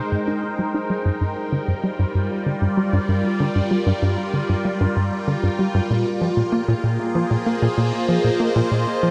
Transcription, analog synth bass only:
0.12 G#2
0.27 D#4
0.59 G3
0.74 D#4
0.90 G3
1.05 G2
1.21 G2
1.52 D3
1.68 G2
1.83 G3
1.99 G2
2.15 G2
2.46 D3
2.62 G2
2.77 G3
2.93 G2
3.09 G2
3.40 D3
3.55 G2
3.71 G3
3.86 G2
4.02 G2
4.33 D3
4.49 G2
4.65 G3
4.80 G2
4.96 G2
5.27 D3
5.43 G2
5.59 G3
5.74 G2
5.90 A#2
6.21 F3
6.37 A#2
6.52 A#3
6.68 A#2
6.84 A#2
7.15 F3
7.30 A#2
7.46 A#3
7.62 A#2
7.77 A#2
8.09 F3
8.24 A#2
8.40 A#3
8.56 A#2
8.71 A#2
9.03 F3

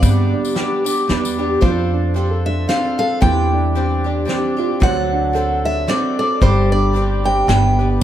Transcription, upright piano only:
0.03 B3
0.33 D4
0.56 G4
0.86 D4
1.09 B3
1.39 D4
1.62 F3
1.93 D4
2.15 G4
2.31 A4
2.46 D4
2.69 C4
2.99 A4
3.23 E3
3.54 D4
3.76 G4
4.06 D4
4.29 C4
4.59 F4
4.71 G4
4.83 F#3
5.13 D4
5.35 A4
5.66 D4
5.89 C4
6.19 A4
6.42 G3
6.73 D4
6.94 G4
7.26 D4
7.48 B3
7.79 G4

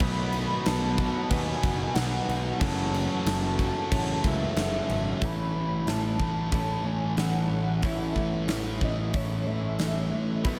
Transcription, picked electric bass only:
0.00 B1
0.66 B1
1.30 D#2
1.63 F#1
1.96 B1
2.29 B1
2.61 F#1
3.26 F#1
3.92 A1
4.24 C#2
4.57 F#1
4.90 G#1
5.22 A1
5.55 A1
5.87 A1
6.19 A1
6.52 A1
6.84 A1
7.17 A1
7.50 A1
7.83 A1
8.15 A1
8.48 A1
8.81 A1
9.13 A1
9.47 A1
9.79 A1
10.13 A1
10.45 B1

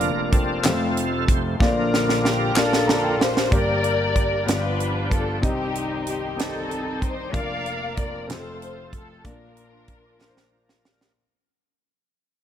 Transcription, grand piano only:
Already playing: F1 F2 A#3 D4 F4 D5
0.64 F1 F2 A3 C4 F4 C5
1.60 A#1 A#2 A#3 D4 F4 D5
2.56 A#3 D4 F4 D5
2.88 A#5
3.04 G5
3.20 F5
3.49 G1 G2 A#3 D4 G4 D5
4.47 G1 G2 B3 F4 G4 D5
5.41 C2 C3 C4 D#4 G4 D#5
6.37 C4 D#4 G4 D#5
7.31 F1 F2 A#3 D4 F4 D5
8.27 F1 F2 A3 C4 F4 C5
9.24 A#1 A#2 A#3 D4 F4 D5
10.19 A#3 D4 F4 A#4
10.28 C5

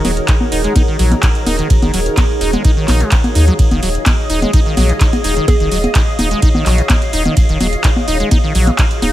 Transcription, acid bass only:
0.05 F#3
0.29 D#4
0.52 D#4
0.64 G#3
0.76 D#4
0.88 D#3
0.99 F#3
1.12 D#3
1.23 D#4
1.47 D#4
1.59 D#3
1.83 D#3
1.94 F#3
2.17 D#4
2.41 D#4
2.53 G#3
2.65 D#4
2.77 D#3
2.88 D#4
3.01 G#3
3.12 C#4
3.35 D#4
3.48 F#3
3.71 D#3
3.83 F#3
4.06 D#4
4.30 D#4
4.42 G#3
4.53 D#4
4.66 D#3
4.77 F#3
4.90 D#3
5.01 D#4
5.24 D#4
5.37 D#3
5.60 D#3
5.72 F#3
5.95 D#4
6.19 D#4
6.31 G#3
6.43 D#4
6.55 D#3
6.66 F#3
6.78 D#3
6.90 D#4
7.13 D#4
7.26 D#3
7.49 D#3
7.61 F#3
7.84 D#4
8.08 D#4
8.20 G#3
8.31 D#4
8.44 D#3
8.55 F#3
8.68 D#3
8.79 D#4
9.02 D#4

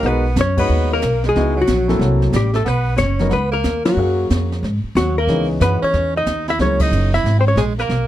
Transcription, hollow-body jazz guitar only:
0.06 B4
0.41 C#5
0.59 B4
0.93 A#4
1.29 G#4
1.62 F#4
2.36 G4
2.56 A4
2.68 B4
2.98 C#5
3.33 B4
3.53 A#4
3.86 F#4
4.97 F#4
5.18 A#4
5.62 B4
5.84 C#5
6.17 D#5
6.50 E5
6.62 C#5
6.81 D#5
7.14 E5
7.41 C5
7.48 C#5
7.58 G#4
7.80 A#4

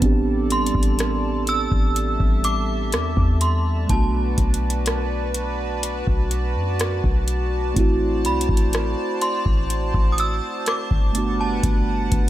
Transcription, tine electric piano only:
0.00 B3 C4 D4
0.05 G4
3.87 A3 B3
3.91 D4 F#4
7.74 A3 C4 E4
7.80 F#4
11.12 A3 B3 D4
11.18 F#4

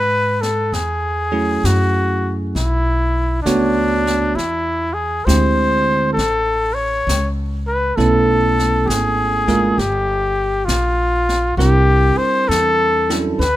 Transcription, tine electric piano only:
1.32 F#3 A3 C#4 E4 G#4
3.46 A3 B3 D4 F#4 C#5
5.27 G#3 C4 D4 E4 G4
7.97 A3 B3 C#4 E4 A4
9.48 G#3 A#3 D4 F4 A#4
11.58 G3 C4 D4 E4 A#4
13.10 F#3 C#4 D4 E4 A4

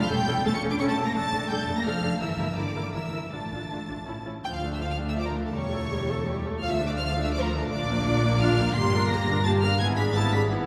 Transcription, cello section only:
0.01 F3
0.10 G3
0.44 A3
0.53 C#4
0.70 D4
0.79 C#4
0.88 A3
1.05 A#3
1.14 A3
1.49 G3
1.58 A3
1.76 A#3
1.85 F3
2.20 E3
2.56 D3
2.93 E3
3.32 A3
4.45 D2
5.53 E2
6.62 D2
7.70 A#2
8.75 G2
9.80 G#2

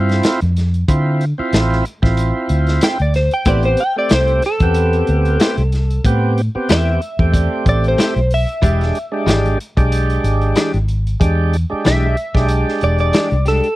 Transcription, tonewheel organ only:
Already playing: C4 E4 F4
0.88 C4 E4 F4
1.38 C4 E4 F4
2.02 C4 E4 F4
3.47 B3 C4 G4
3.96 A3 C4 G4
4.62 B3 C4 G4
6.05 B3 C4 G4
6.55 B3 C4 G4
7.19 A3 C4 G4
8.62 G#3 D4 G4
9.12 G#3 D4 G4
9.77 G#3 D4 G4
11.20 G#3 D4 G4
11.70 G#3 D4 G4
12.34 G#3 D4 G4

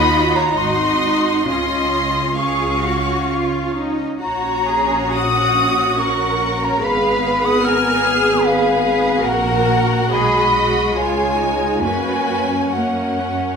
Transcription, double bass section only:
Already playing: D#2
0.58 G#1
1.47 C#2
4.22 A#1
6.84 G#1
9.23 A#1
10.12 B1
10.96 C#2
11.82 F#2

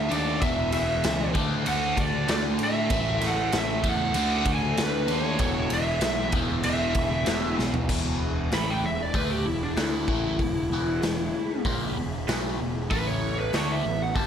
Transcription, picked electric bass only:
0.11 D#2
0.42 E1
0.74 E1
1.05 C#2
1.35 D2
1.68 D2
1.97 D2
2.29 D2
2.60 A2
2.90 A1
3.22 A1
3.53 A1
3.84 E2
4.14 D2
4.45 D2
4.77 D2
5.09 D#2
5.39 E1
5.70 E1
6.01 B1
6.33 E1
6.64 E1
6.95 E1
7.27 E1
7.59 B1
7.89 E1
8.52 A1
8.82 E1
9.14 D2
9.45 E1
9.77 D2
10.08 A1
10.39 E1
10.70 E1
11.02 E1
11.65 A#1
11.97 E1
12.28 B1
12.60 E1
12.91 A1
13.53 D2
13.85 A1
14.15 G1

